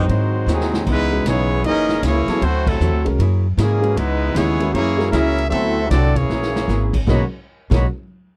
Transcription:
Already playing: trombone section D#3 F#3 C4, trumpet section G#3 C5
0.00 trumpet section D#4 F#4
0.09 upright bass G#2, hollow-body jazz guitar G#2 F#3 C4 E4, kick, ride
0.47 upright bass D#2, hollow-body jazz guitar G#2 F#3 C4 E4, trombone section C3 D#3 G#3, snare, hi-hat pedal
0.51 trumpet section F#3 C4 D#4 G#4
0.61 snare
0.74 snare
0.86 upright bass C#2, hollow-body jazz guitar C#3 E3 B3 D#4, trombone section E3 G#3 B3, kick, crash
0.90 trumpet section G#3 D#4 E4 B4
1.12 grand piano G#3 C#4 F#4 B4
1.25 upright bass B1, hollow-body jazz guitar C#3 E3 B3 D#4, trombone section E3 G#3 C#4, trumpet section B3 E4 G#4 C#5, kick, snare, hi-hat pedal, ride
1.64 upright bass F#1, trombone section E3 A#3 D#4, hollow-body jazz guitar F#3 A#3 E4 G#4, trumpet section C#4 G#4 A#4 D#5, kick, ride
1.89 snare
2.03 upright bass C#2, trombone section E3 A#3 C#4, hollow-body jazz guitar F#3 A#3 E4 G#4, trumpet section A#3 E4 G#4 C#5, kick, snare, hi-hat pedal, ride
2.28 grand piano F#3 B3 E4 A4, muted upright bass stroke, snare, ride
2.42 upright bass D2, hollow-body jazz guitar D3 C4 E4 F#4, trombone section F#3 A3 C4, trumpet section A3 E4 F#4 C5, kick, ride
2.67 trombone section C3 F#3 A3, trumpet section F#3 C4 E4 A4, kick, crash
2.80 upright bass E2, hollow-body jazz guitar D3 C4 E4 F#4, hi-hat pedal
2.93 upright bass D2
3.05 upright bass C2, grand piano G#3 C#4 F#4 A#4, ride
3.19 upright bass F#2, hollow-body jazz guitar F#3 A#3 E4 G#4, kick, ride
3.57 upright bass G#2, trombone section C#3 E3 G#3, hollow-body jazz guitar F#3 A#3 E4 G#4, trumpet section A#3 C#4 G#4, kick, snare, hi-hat pedal, ride
3.81 grand piano G#3 C#4 F#4 B4, ride
3.95 upright bass C#2, hollow-body jazz guitar C#3 E3 B3 D#4, trombone section E3 G#3 B3, trumpet section G#3 D#4 E4 B4, kick, ride
4.33 upright bass D#2, hollow-body jazz guitar C#3 E3 B3, trombone section G#3 C#4 E4, trumpet section B3 E4 G#4 C#5, kick, snare, hi-hat pedal, ride
4.37 hollow-body jazz guitar D#4
4.60 grand piano G#3 C#4 F#4 A#4, ride
4.71 upright bass F#2, trombone section E3 A#3 C#4, hollow-body jazz guitar F#3 A#3, trumpet section A#3 E4 G#4 C#5, kick, ride
4.76 hollow-body jazz guitar E4 G#4
4.98 grand piano G#3 C#4 F#4 A#4, snare
5.10 upright bass C#2, hollow-body jazz guitar F#3 A#3, trombone section A#3 C#4 E4, trumpet section C#4 G#4 A#4 E5, kick, snare, hi-hat pedal, ride
5.15 hollow-body jazz guitar E4 G#4
5.38 ride
5.48 upright bass D2, hollow-body jazz guitar D3, grand piano F#3 B3 E4 A4, trombone section A3 C4 E4, trumpet section C4 F#4 A4 D5 E5, kick, ride
5.53 hollow-body jazz guitar F#3 C4 E4
5.89 upright bass C2, hollow-body jazz guitar D3 F#3 C4 E4, trombone section F#3 A3 D4, trumpet section C4 F#4 A4 C5 D5, kick, snare, hi-hat pedal, ride
6.15 trombone section E3 A#3 C#4, trumpet section A#3 E4 G#4 C#5, kick, ride
6.29 upright bass A#1, hollow-body jazz guitar F#3 A#3 E4 G#4, snare
6.43 snare
6.56 snare
6.68 upright bass G#1, hollow-body jazz guitar F#3 A#3 E4 G#4, snare, hi-hat pedal
6.93 kick, crash
7.07 upright bass B1, hollow-body jazz guitar B2 D#3 A#3 C#4, trombone section B2 F#3 A#3 D#4, grand piano G#3 C#4 F#4 A#4, trumpet section F#4 C#5 D#5 B5, kick, snare
7.70 upright bass B1, hollow-body jazz guitar B2 D#3 A#3 C#4, trombone section B2 F#3 A#3 D#4, grand piano G#3 C#4 F#4 A#4, trumpet section F#4 C#5 D#5 B5, kick, snare, crash

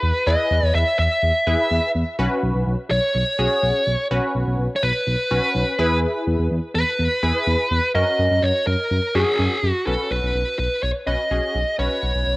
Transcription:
Already playing: lead electric guitar B4
0.03 analog synth bass E2
0.27 analog synth bass E2, analog polysynth E4 G#4 B4, lead electric guitar D#5
0.51 analog synth bass E2
0.63 analog synth bass E2
0.75 analog synth bass E2, lead electric guitar E5
0.99 analog synth bass E2, lead electric guitar E5
1.23 analog synth bass E2
1.47 analog synth bass E2, analog polysynth E4 G#4 B4
1.71 analog synth bass E2
1.95 analog synth bass E2
2.19 analog synth bass B1, analog polysynth C#4 F#4 B4
2.43 analog synth bass B1
2.55 analog synth bass B1
2.67 analog synth bass B1
2.91 analog synth bass B1, lead electric guitar C#5
3.15 analog synth bass B1
3.39 analog synth bass B1, analog polysynth C#4 F#4 G#4
3.63 analog synth bass B1
3.87 analog synth bass B1
4.11 analog synth bass B1, analog polysynth C#4 F#4 B4
4.35 analog synth bass B1
4.47 analog synth bass B1
4.59 analog synth bass B1
4.76 lead electric guitar C#5
4.83 analog synth bass B1, lead electric guitar B4
5.07 analog synth bass B1
5.31 analog synth bass B1, analog polysynth C#4 F#4 B4
5.55 analog synth bass B1
5.79 analog synth bass E2, analog polysynth E4 G#4 B4
6.27 analog synth bass E2
6.39 analog synth bass E2
6.51 analog synth bass E2
6.75 analog synth bass E2, lead electric guitar B4
6.99 analog synth bass E2
7.23 analog synth bass E2, analog polysynth E4 G#4 B4
7.47 analog synth bass E2
7.71 analog synth bass E2
7.95 analog synth bass F#2, analog polysynth C#4 F#4 A#4, lead electric guitar D#5
8.19 analog synth bass F#2
8.31 analog synth bass F#2
8.43 analog synth bass F#2, lead electric guitar C#5
8.67 analog synth bass F#2, lead electric guitar A#4
8.91 analog synth bass F#2
9.15 analog synth bass F#2, analog polysynth C#4 F#4 G#4, lead electric guitar G#4
9.39 analog synth bass F#2
9.63 analog synth bass F#2
9.70 lead electric guitar F#4
9.87 analog synth bass B1, analog polysynth C#4 F#4 B4, lead electric guitar A4
10.11 analog synth bass B1, lead electric guitar B4
10.23 analog synth bass B1
10.35 analog synth bass B1
10.59 analog synth bass B1, lead electric guitar B4
10.83 analog synth bass B1, lead electric guitar C#5
11.07 analog synth bass B1, analog polysynth C#4 F#4 B4, lead electric guitar D#5
11.31 analog synth bass B1, analog polysynth C#4 F#4 G#4
11.55 analog synth bass B1
11.79 analog synth bass B1, analog polysynth C#4 F#4 B4, lead electric guitar C#5
12.03 analog synth bass B1
12.15 analog synth bass B1
12.27 analog synth bass B1

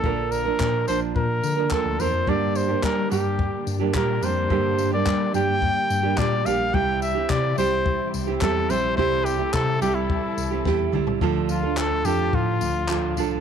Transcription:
Already playing: trumpet A4
0.04 tine electric piano A#1, nylon-string guitar A#2 D3 F3 A#3 D4 A#4, kick
0.31 trumpet A#4, tambourine
0.45 nylon-string guitar F3 A#3 D4 A#4
0.60 tine electric piano A#2, kick, clap
0.88 tine electric piano A#1, nylon-string guitar F3 A#3 D4 A#4, trumpet C5, tambourine
1.16 tine electric piano A#2, trumpet A#4, kick
1.43 tine electric piano D3, tambourine
1.57 nylon-string guitar F3 A#3 D4 A#4
1.70 nylon-string guitar F3 A#3 D4 A#4, trumpet A4, kick, clap
1.86 tine electric piano D2
1.99 tine electric piano E2, nylon-string guitar F3 A#3 D4 A#4, trumpet C5, tambourine
2.13 tine electric piano F2
2.27 nylon-string guitar G2 D3 G3 A#3 D4 G4, tine electric piano G2, string section A#2 D3 G3 D4 G4, trumpet D5, kick
2.55 trumpet C5, tambourine
2.68 nylon-string guitar G3 A#3 D4 G4
2.83 tine electric piano G3, trumpet A#4, kick, clap
3.10 tine electric piano G2, nylon-string guitar G3 A#3 D4 G4, trumpet G4, tambourine
3.39 kick
3.67 tine electric piano G2, tambourine
3.80 nylon-string guitar G3 A#3 D4 G4
3.93 tine electric piano A#2, nylon-string guitar G3 A#3 D4 G4, trumpet A#4, kick, clap
4.21 tine electric piano F2, nylon-string guitar G3 A#3 D4 G4, trumpet C5, tambourine
4.50 nylon-string guitar G2 D3 G3 A#3 D4 G4, tine electric piano G2, kick
4.78 tambourine
4.92 nylon-string guitar G3 A#3 D4 G4, trumpet D5
5.06 tine electric piano G3, kick, clap
5.33 tine electric piano G2, nylon-string guitar G3 A#3 D4 G4, trumpet G5, tambourine
5.62 kick
5.90 tine electric piano G2, tambourine
6.03 nylon-string guitar G3 A#3 D4 G4
6.17 tine electric piano A#2, nylon-string guitar G3 A#3 D4 G4, trumpet D5, kick, clap
6.44 tine electric piano A#1, nylon-string guitar G3 A#3 D4 G4, trumpet F5, tambourine
6.73 tine electric piano C2, nylon-string guitar C3 G3 C4 E4 G4, string section C3 E3 E4, trumpet G5, kick
7.02 trumpet E5, tambourine
7.15 nylon-string guitar C4 E4 G4
7.30 tine electric piano C3, trumpet D5, kick, clap
7.57 tine electric piano C2, nylon-string guitar G3 C4 E4 G4, trumpet C5, tambourine
7.86 kick
8.14 tine electric piano C2, tambourine
8.27 nylon-string guitar C4 E4 G4
8.41 tine electric piano E2, nylon-string guitar G3 C4 E4 G4, trumpet A4, kick, clap
8.69 tine electric piano A#1, nylon-string guitar G3 C4 E4 G4, trumpet C5, tambourine
8.97 tine electric piano C2, nylon-string guitar C3 G3 C4 E4 G4, string section A4, trumpet C5, kick
9.25 trumpet G4, tambourine
9.39 nylon-string guitar C4 E4 G4
9.53 tine electric piano C3, trumpet A4, kick, clap
9.81 tine electric piano C2, nylon-string guitar G3 C4 E4 G4, trumpet G4, tambourine
9.95 trumpet E4
10.10 kick
10.37 tine electric piano C2, tambourine
10.51 nylon-string guitar C4 E4 G4
10.65 tine electric piano E2, nylon-string guitar G3 C4 E4 G4, kick, snare
10.92 tine electric piano C2, nylon-string guitar G3 C4 E4 G4, mid tom
11.07 floor tom
11.21 tine electric piano D2, string section A2 D3 F3 D4 F4, nylon-string guitar D3 F3 D4 F4 A4, kick
11.49 trumpet F4, tambourine
11.63 nylon-string guitar D4 F4 A4
11.77 trumpet A4, clap
12.05 tine electric piano F2, nylon-string guitar F3 D4 F4 A4, trumpet G4, tambourine
12.33 tine electric piano A2, trumpet F4, kick
12.61 tine electric piano D2, tambourine
12.89 nylon-string guitar F3 D4 F4 A4, clap
13.17 tine electric piano C2, nylon-string guitar F3 D4 F4 A4, tambourine

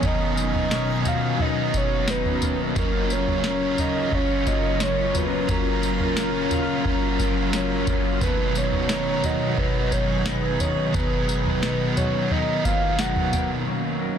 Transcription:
Already playing: string machine B2 D#3 F#3 C#4 D#4, clean electric guitar A#3 D#4 F#4, synth texture G#5
0.02 overdriven electric guitar B2 D#3 F#3 B3 D#4 A#4, clean electric guitar B2, soft synth lead D#5, kick, floor tom, tambourine
0.37 clean electric guitar A#3, tambourine
0.54 floor tom
0.70 overdriven electric guitar F#3 B3 D#4, clean electric guitar C#4, snare, tambourine
0.76 overdriven electric guitar A#4
0.89 clean electric guitar D#4
1.05 clean electric guitar F#4, synth texture D#5, soft synth lead F5, floor tom, tambourine
1.37 overdriven electric guitar F#3, clean electric guitar D#4, floor tom
1.41 overdriven electric guitar B3 D#4, soft synth lead D#5
1.74 soft synth lead C#5, kick, tambourine
2.08 clean electric guitar D#4, soft synth lead B4, snare, tambourine
2.25 floor tom
2.42 clean electric guitar A#3, floor tom, tambourine
2.75 string machine C#3 F#3 F4, overdriven electric guitar F#3 C#4 F4 A#4, clean electric guitar F#3, synth texture A#4, soft synth lead A#4, kick, floor tom, tambourine
2.97 synth texture C#5
3.10 clean electric guitar A#3, soft synth lead C#5, tambourine
3.27 floor tom
3.43 overdriven electric guitar F#3 C#4 F4, clean electric guitar C#4, snare, tambourine
3.48 overdriven electric guitar A#4
3.77 clean electric guitar D#4, soft synth lead D#5, synth texture A#5, floor tom, tambourine
3.96 clean electric guitar F4
4.09 overdriven electric guitar F#3, clean electric guitar C#4, kick, floor tom
4.13 overdriven electric guitar C#4 F4, soft synth lead C#5
4.46 clean electric guitar A#3, soft synth lead D#5, kick, tambourine
4.80 clean electric guitar C#4, soft synth lead C#5, snare, tambourine
5.15 soft synth lead B4, floor tom, tambourine
5.47 overdriven electric guitar F#3 C#4 F4 A#4, clean electric guitar F#3, soft synth lead A#4, kick, floor tom, tambourine
5.83 clean electric guitar A#3, tambourine
6.00 floor tom
6.16 overdriven electric guitar F#3 C#4 F4, clean electric guitar C#4, snare, tambourine
6.21 overdriven electric guitar A#4
6.51 clean electric guitar F4, floor tom, tambourine
6.82 overdriven electric guitar F#3, clean electric guitar C#4, kick, floor tom
6.86 overdriven electric guitar C#4 F4
6.93 overdriven electric guitar A#4
7.19 clean electric guitar A#3, kick, tambourine
7.53 clean electric guitar C#4, snare, tambourine
7.87 clean electric guitar A#3, kick, floor tom, tambourine
8.20 overdriven electric guitar B2 D#3 F#3 B3 D#4, clean electric guitar B2, string machine B2 D#3 D#4, soft synth lead B4, kick, floor tom, tambourine
8.55 clean electric guitar A#3, soft synth lead C#5, tambourine
8.72 floor tom
8.88 overdriven electric guitar F#3 B3 D#4, clean electric guitar D#4, synth texture G#4, snare, tambourine
8.93 overdriven electric guitar A#4
9.24 clean electric guitar F#4, soft synth lead D#5, floor tom, tambourine
9.55 overdriven electric guitar F#3, clean electric guitar D#4, kick, floor tom
9.59 overdriven electric guitar B3 D#4, soft synth lead B4
9.92 soft synth lead C#5, kick, tambourine
10.26 clean electric guitar D#4, soft synth lead B4, snare, tambourine
10.60 soft synth lead C#5, floor tom, tambourine
10.92 overdriven electric guitar B2 D#3 F#3 B3 D#4, clean electric guitar B2, soft synth lead B4, kick, floor tom, tambourine
11.29 tambourine
11.46 floor tom
11.61 overdriven electric guitar F#3 B3 D#4, clean electric guitar D#4, snare, tambourine
11.96 clean electric guitar F#4, soft synth lead C#5, floor tom, tambourine
12.28 overdriven electric guitar F#3, clean electric guitar D#4, soft synth lead D#5, floor tom
12.32 overdriven electric guitar B3 D#4
12.39 overdriven electric guitar A#4
12.65 clean electric guitar A#3, soft synth lead F5, kick, tambourine
12.99 clean electric guitar D#4, soft synth lead F#5, snare, tambourine
13.16 floor tom
13.33 clean electric guitar A#3, floor tom, tambourine
13.66 string machine D#3 F#3 A#3 C#4 F#4, clean electric guitar F#3
14.01 clean electric guitar A#4

